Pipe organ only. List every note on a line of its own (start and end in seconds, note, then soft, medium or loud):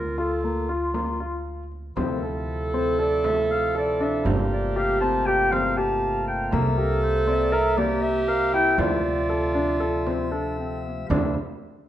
1.96 11.06 C3 medium
1.96 4.23 F3 soft
1.96 4.23 E4 medium
4.26 6.50 A3 soft
4.26 8.75 A#3 soft
4.26 6.51 F4 medium
6.53 11.06 E5 medium
8.80 11.08 F3 medium
11.10 11.34 C3 soft
11.10 11.34 F3 soft
11.10 11.34 E4 medium